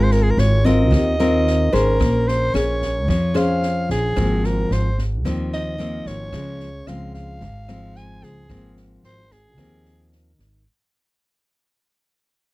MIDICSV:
0, 0, Header, 1, 5, 480
1, 0, Start_track
1, 0, Key_signature, -4, "major"
1, 0, Tempo, 541028
1, 1778, Time_signature, 4, 2, 24, 8
1, 11125, End_track
2, 0, Start_track
2, 0, Title_t, "Soprano saxophone"
2, 0, Program_c, 0, 64
2, 28, Note_on_c, 0, 72, 68
2, 108, Note_on_c, 0, 70, 66
2, 121, Note_off_c, 0, 72, 0
2, 199, Note_on_c, 0, 68, 75
2, 213, Note_off_c, 0, 70, 0
2, 271, Note_on_c, 0, 70, 77
2, 284, Note_off_c, 0, 68, 0
2, 347, Note_on_c, 0, 73, 78
2, 361, Note_off_c, 0, 70, 0
2, 581, Note_on_c, 0, 75, 96
2, 594, Note_off_c, 0, 73, 0
2, 1540, Note_on_c, 0, 70, 82
2, 1554, Note_off_c, 0, 75, 0
2, 2022, Note_on_c, 0, 72, 79
2, 2036, Note_off_c, 0, 70, 0
2, 2255, Note_on_c, 0, 73, 76
2, 2269, Note_off_c, 0, 72, 0
2, 2738, Note_off_c, 0, 73, 0
2, 2749, Note_on_c, 0, 73, 80
2, 2990, Note_on_c, 0, 77, 99
2, 3003, Note_off_c, 0, 73, 0
2, 3465, Note_off_c, 0, 77, 0
2, 3471, Note_on_c, 0, 68, 80
2, 3954, Note_on_c, 0, 70, 74
2, 3967, Note_off_c, 0, 68, 0
2, 4193, Note_on_c, 0, 72, 69
2, 4206, Note_off_c, 0, 70, 0
2, 4427, Note_off_c, 0, 72, 0
2, 4909, Note_on_c, 0, 75, 89
2, 5387, Note_on_c, 0, 73, 92
2, 5400, Note_off_c, 0, 75, 0
2, 6102, Note_on_c, 0, 77, 81
2, 6115, Note_off_c, 0, 73, 0
2, 6336, Note_off_c, 0, 77, 0
2, 6341, Note_on_c, 0, 77, 97
2, 7069, Note_on_c, 0, 80, 104
2, 7083, Note_off_c, 0, 77, 0
2, 7307, Note_on_c, 0, 68, 84
2, 7321, Note_off_c, 0, 80, 0
2, 7784, Note_off_c, 0, 68, 0
2, 8028, Note_on_c, 0, 72, 94
2, 8270, Note_on_c, 0, 68, 86
2, 8283, Note_off_c, 0, 72, 0
2, 8985, Note_off_c, 0, 68, 0
2, 11125, End_track
3, 0, Start_track
3, 0, Title_t, "Nylon-string guitar"
3, 0, Program_c, 1, 24
3, 0, Note_on_c, 1, 56, 51
3, 0, Note_on_c, 1, 60, 55
3, 0, Note_on_c, 1, 65, 62
3, 0, Note_on_c, 1, 70, 63
3, 539, Note_off_c, 1, 60, 0
3, 541, Note_off_c, 1, 65, 0
3, 541, Note_off_c, 1, 70, 0
3, 572, Note_on_c, 1, 60, 54
3, 582, Note_on_c, 1, 65, 52
3, 586, Note_on_c, 1, 70, 65
3, 790, Note_off_c, 1, 56, 0
3, 804, Note_on_c, 1, 51, 53
3, 1017, Note_off_c, 1, 60, 0
3, 1021, Note_off_c, 1, 65, 0
3, 1024, Note_off_c, 1, 70, 0
3, 1061, Note_on_c, 1, 60, 60
3, 1066, Note_on_c, 1, 65, 62
3, 1066, Note_on_c, 1, 70, 66
3, 1501, Note_off_c, 1, 60, 0
3, 1502, Note_off_c, 1, 65, 0
3, 1504, Note_off_c, 1, 70, 0
3, 1531, Note_on_c, 1, 61, 57
3, 1536, Note_on_c, 1, 68, 51
3, 1536, Note_on_c, 1, 72, 58
3, 1748, Note_off_c, 1, 51, 0
3, 1771, Note_on_c, 1, 58, 49
3, 2244, Note_off_c, 1, 61, 0
3, 2246, Note_off_c, 1, 68, 0
3, 2253, Note_on_c, 1, 61, 47
3, 2260, Note_on_c, 1, 68, 50
3, 2458, Note_off_c, 1, 72, 0
3, 2712, Note_off_c, 1, 58, 0
3, 2733, Note_on_c, 1, 53, 52
3, 2734, Note_off_c, 1, 61, 0
3, 2735, Note_off_c, 1, 68, 0
3, 2965, Note_on_c, 1, 61, 54
3, 2968, Note_on_c, 1, 68, 54
3, 2973, Note_on_c, 1, 72, 64
3, 3655, Note_off_c, 1, 61, 0
3, 3656, Note_off_c, 1, 68, 0
3, 3658, Note_off_c, 1, 72, 0
3, 3673, Note_off_c, 1, 53, 0
3, 3694, Note_on_c, 1, 53, 53
3, 3698, Note_on_c, 1, 44, 54
3, 3700, Note_on_c, 1, 58, 50
3, 3704, Note_on_c, 1, 60, 55
3, 4343, Note_off_c, 1, 53, 0
3, 4345, Note_off_c, 1, 58, 0
3, 4348, Note_off_c, 1, 60, 0
3, 4636, Note_off_c, 1, 44, 0
3, 4659, Note_on_c, 1, 51, 52
3, 4661, Note_on_c, 1, 53, 56
3, 4667, Note_on_c, 1, 58, 54
3, 4668, Note_on_c, 1, 60, 61
3, 5102, Note_off_c, 1, 53, 0
3, 5103, Note_off_c, 1, 58, 0
3, 5106, Note_off_c, 1, 60, 0
3, 5130, Note_on_c, 1, 53, 50
3, 5138, Note_on_c, 1, 58, 55
3, 5141, Note_on_c, 1, 60, 62
3, 5578, Note_off_c, 1, 53, 0
3, 5582, Note_off_c, 1, 58, 0
3, 5582, Note_off_c, 1, 60, 0
3, 5597, Note_off_c, 1, 51, 0
3, 5618, Note_on_c, 1, 49, 55
3, 5619, Note_on_c, 1, 53, 49
3, 5624, Note_on_c, 1, 56, 51
3, 5929, Note_off_c, 1, 53, 0
3, 5931, Note_off_c, 1, 56, 0
3, 6104, Note_on_c, 1, 53, 53
3, 6110, Note_on_c, 1, 56, 55
3, 6114, Note_on_c, 1, 60, 56
3, 6556, Note_off_c, 1, 49, 0
3, 6580, Note_off_c, 1, 53, 0
3, 6580, Note_on_c, 1, 44, 51
3, 6583, Note_off_c, 1, 56, 0
3, 6584, Note_off_c, 1, 60, 0
3, 6820, Note_on_c, 1, 56, 66
3, 6822, Note_on_c, 1, 53, 67
3, 6825, Note_on_c, 1, 60, 76
3, 7502, Note_off_c, 1, 56, 0
3, 7503, Note_off_c, 1, 53, 0
3, 7505, Note_off_c, 1, 60, 0
3, 7517, Note_off_c, 1, 44, 0
3, 7540, Note_on_c, 1, 44, 51
3, 7542, Note_on_c, 1, 53, 47
3, 7543, Note_on_c, 1, 58, 56
3, 7548, Note_on_c, 1, 60, 58
3, 8185, Note_off_c, 1, 53, 0
3, 8187, Note_off_c, 1, 58, 0
3, 8190, Note_off_c, 1, 60, 0
3, 8477, Note_off_c, 1, 44, 0
3, 8496, Note_on_c, 1, 51, 54
3, 8500, Note_on_c, 1, 53, 50
3, 8501, Note_on_c, 1, 58, 53
3, 8507, Note_on_c, 1, 60, 56
3, 9144, Note_off_c, 1, 53, 0
3, 9146, Note_off_c, 1, 58, 0
3, 9147, Note_off_c, 1, 60, 0
3, 9434, Note_off_c, 1, 51, 0
3, 11125, End_track
4, 0, Start_track
4, 0, Title_t, "Upright bass"
4, 0, Program_c, 2, 32
4, 0, Note_on_c, 2, 32, 86
4, 300, Note_off_c, 2, 32, 0
4, 329, Note_on_c, 2, 32, 83
4, 817, Note_off_c, 2, 32, 0
4, 817, Note_on_c, 2, 39, 88
4, 1502, Note_off_c, 2, 39, 0
4, 1539, Note_on_c, 2, 32, 71
4, 1762, Note_off_c, 2, 32, 0
4, 1779, Note_on_c, 2, 34, 83
4, 2225, Note_off_c, 2, 34, 0
4, 2253, Note_on_c, 2, 34, 78
4, 2741, Note_off_c, 2, 34, 0
4, 2741, Note_on_c, 2, 41, 96
4, 3425, Note_off_c, 2, 41, 0
4, 3452, Note_on_c, 2, 34, 72
4, 3679, Note_off_c, 2, 34, 0
4, 3694, Note_on_c, 2, 32, 85
4, 4144, Note_off_c, 2, 32, 0
4, 4177, Note_on_c, 2, 32, 80
4, 4658, Note_off_c, 2, 32, 0
4, 4658, Note_on_c, 2, 39, 86
4, 5344, Note_off_c, 2, 39, 0
4, 5376, Note_on_c, 2, 32, 76
4, 5602, Note_off_c, 2, 32, 0
4, 5617, Note_on_c, 2, 37, 82
4, 6066, Note_off_c, 2, 37, 0
4, 6097, Note_on_c, 2, 37, 77
4, 6578, Note_on_c, 2, 32, 95
4, 6591, Note_off_c, 2, 37, 0
4, 7264, Note_off_c, 2, 32, 0
4, 7297, Note_on_c, 2, 37, 76
4, 7522, Note_off_c, 2, 37, 0
4, 7537, Note_on_c, 2, 32, 81
4, 7985, Note_off_c, 2, 32, 0
4, 8017, Note_on_c, 2, 32, 83
4, 8498, Note_off_c, 2, 32, 0
4, 8498, Note_on_c, 2, 39, 94
4, 9184, Note_off_c, 2, 39, 0
4, 9218, Note_on_c, 2, 32, 78
4, 9442, Note_off_c, 2, 32, 0
4, 11125, End_track
5, 0, Start_track
5, 0, Title_t, "Drums"
5, 97, Note_on_c, 9, 38, 22
5, 186, Note_off_c, 9, 38, 0
5, 337, Note_on_c, 9, 38, 24
5, 425, Note_off_c, 9, 38, 0
5, 577, Note_on_c, 9, 36, 20
5, 578, Note_on_c, 9, 38, 21
5, 666, Note_off_c, 9, 36, 0
5, 667, Note_off_c, 9, 38, 0
5, 818, Note_on_c, 9, 36, 59
5, 818, Note_on_c, 9, 37, 54
5, 818, Note_on_c, 9, 38, 24
5, 907, Note_off_c, 9, 36, 0
5, 907, Note_off_c, 9, 37, 0
5, 907, Note_off_c, 9, 38, 0
5, 1064, Note_on_c, 9, 38, 23
5, 1152, Note_off_c, 9, 38, 0
5, 1303, Note_on_c, 9, 38, 23
5, 1392, Note_off_c, 9, 38, 0
5, 1540, Note_on_c, 9, 36, 23
5, 1544, Note_on_c, 9, 38, 22
5, 1628, Note_off_c, 9, 36, 0
5, 1633, Note_off_c, 9, 38, 0
5, 1779, Note_on_c, 9, 36, 59
5, 1780, Note_on_c, 9, 37, 59
5, 1780, Note_on_c, 9, 38, 24
5, 1868, Note_off_c, 9, 36, 0
5, 1869, Note_off_c, 9, 37, 0
5, 1869, Note_off_c, 9, 38, 0
5, 2023, Note_on_c, 9, 38, 23
5, 2112, Note_off_c, 9, 38, 0
5, 2262, Note_on_c, 9, 37, 56
5, 2262, Note_on_c, 9, 38, 22
5, 2351, Note_off_c, 9, 37, 0
5, 2351, Note_off_c, 9, 38, 0
5, 2498, Note_on_c, 9, 36, 22
5, 2500, Note_on_c, 9, 38, 21
5, 2587, Note_off_c, 9, 36, 0
5, 2589, Note_off_c, 9, 38, 0
5, 2739, Note_on_c, 9, 36, 58
5, 2740, Note_on_c, 9, 38, 23
5, 2827, Note_off_c, 9, 36, 0
5, 2829, Note_off_c, 9, 38, 0
5, 2977, Note_on_c, 9, 37, 60
5, 2977, Note_on_c, 9, 38, 23
5, 3066, Note_off_c, 9, 37, 0
5, 3066, Note_off_c, 9, 38, 0
5, 3215, Note_on_c, 9, 38, 23
5, 3304, Note_off_c, 9, 38, 0
5, 3455, Note_on_c, 9, 36, 24
5, 3457, Note_on_c, 9, 38, 24
5, 3544, Note_off_c, 9, 36, 0
5, 3546, Note_off_c, 9, 38, 0
5, 3695, Note_on_c, 9, 37, 59
5, 3695, Note_on_c, 9, 38, 25
5, 3696, Note_on_c, 9, 36, 62
5, 3784, Note_off_c, 9, 37, 0
5, 3784, Note_off_c, 9, 38, 0
5, 3785, Note_off_c, 9, 36, 0
5, 3936, Note_on_c, 9, 38, 22
5, 4024, Note_off_c, 9, 38, 0
5, 4180, Note_on_c, 9, 38, 24
5, 4269, Note_off_c, 9, 38, 0
5, 4417, Note_on_c, 9, 36, 22
5, 4421, Note_on_c, 9, 38, 23
5, 4506, Note_off_c, 9, 36, 0
5, 4509, Note_off_c, 9, 38, 0
5, 4658, Note_on_c, 9, 36, 56
5, 4661, Note_on_c, 9, 37, 55
5, 4661, Note_on_c, 9, 38, 24
5, 4746, Note_off_c, 9, 36, 0
5, 4750, Note_off_c, 9, 37, 0
5, 4750, Note_off_c, 9, 38, 0
5, 4901, Note_on_c, 9, 38, 24
5, 4990, Note_off_c, 9, 38, 0
5, 5135, Note_on_c, 9, 38, 21
5, 5223, Note_off_c, 9, 38, 0
5, 5375, Note_on_c, 9, 36, 22
5, 5377, Note_on_c, 9, 38, 23
5, 5464, Note_off_c, 9, 36, 0
5, 5466, Note_off_c, 9, 38, 0
5, 5612, Note_on_c, 9, 37, 59
5, 5612, Note_on_c, 9, 38, 24
5, 5614, Note_on_c, 9, 36, 61
5, 5701, Note_off_c, 9, 37, 0
5, 5701, Note_off_c, 9, 38, 0
5, 5703, Note_off_c, 9, 36, 0
5, 5854, Note_on_c, 9, 38, 21
5, 5942, Note_off_c, 9, 38, 0
5, 6095, Note_on_c, 9, 37, 54
5, 6095, Note_on_c, 9, 38, 21
5, 6184, Note_off_c, 9, 37, 0
5, 6184, Note_off_c, 9, 38, 0
5, 6334, Note_on_c, 9, 38, 21
5, 6335, Note_on_c, 9, 36, 21
5, 6423, Note_off_c, 9, 38, 0
5, 6424, Note_off_c, 9, 36, 0
5, 6574, Note_on_c, 9, 38, 23
5, 6577, Note_on_c, 9, 36, 60
5, 6663, Note_off_c, 9, 38, 0
5, 6665, Note_off_c, 9, 36, 0
5, 6818, Note_on_c, 9, 37, 56
5, 6818, Note_on_c, 9, 38, 23
5, 6906, Note_off_c, 9, 37, 0
5, 6906, Note_off_c, 9, 38, 0
5, 7057, Note_on_c, 9, 38, 22
5, 7146, Note_off_c, 9, 38, 0
5, 7297, Note_on_c, 9, 38, 23
5, 7298, Note_on_c, 9, 36, 23
5, 7385, Note_off_c, 9, 38, 0
5, 7387, Note_off_c, 9, 36, 0
5, 7536, Note_on_c, 9, 37, 61
5, 7536, Note_on_c, 9, 38, 23
5, 7538, Note_on_c, 9, 36, 60
5, 7625, Note_off_c, 9, 37, 0
5, 7625, Note_off_c, 9, 38, 0
5, 7627, Note_off_c, 9, 36, 0
5, 7776, Note_on_c, 9, 38, 23
5, 7865, Note_off_c, 9, 38, 0
5, 8015, Note_on_c, 9, 38, 22
5, 8104, Note_off_c, 9, 38, 0
5, 8259, Note_on_c, 9, 36, 20
5, 8260, Note_on_c, 9, 38, 22
5, 8347, Note_off_c, 9, 36, 0
5, 8348, Note_off_c, 9, 38, 0
5, 8497, Note_on_c, 9, 37, 57
5, 8497, Note_on_c, 9, 38, 21
5, 8499, Note_on_c, 9, 36, 56
5, 8586, Note_off_c, 9, 37, 0
5, 8586, Note_off_c, 9, 38, 0
5, 8587, Note_off_c, 9, 36, 0
5, 8740, Note_on_c, 9, 38, 24
5, 8829, Note_off_c, 9, 38, 0
5, 8980, Note_on_c, 9, 38, 22
5, 9068, Note_off_c, 9, 38, 0
5, 9219, Note_on_c, 9, 38, 22
5, 9220, Note_on_c, 9, 36, 22
5, 9308, Note_off_c, 9, 36, 0
5, 9308, Note_off_c, 9, 38, 0
5, 11125, End_track
0, 0, End_of_file